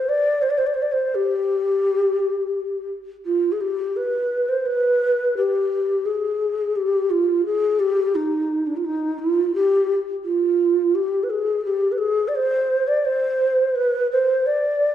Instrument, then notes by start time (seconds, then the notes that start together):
ney
Already playing: C5
0.09 D5
0.42 C5
0.50 D5
0.58 C5
0.67 D5
0.74 C5
0.82 D5
0.92 C5
1.15 G4
3.25 F4
3.52 G#4
3.61 G4
3.96 B4
4.49 C5
4.66 B4
5.37 G4
6.06 G#4
6.76 G4
7.10 F4
7.45 G#4
7.79 G4
8.15 D#4
8.67 D4
8.77 F4
8.85 D#4
9.19 F4
9.54 G4
10.24 F4
10.95 G4
11.23 B4
11.30 G#4
11.65 G4
11.92 B4
11.98 G#4
12.28 D5
12.35 C5
12.87 D5
13.05 C5
13.75 B4
14.11 C5
14.46 D5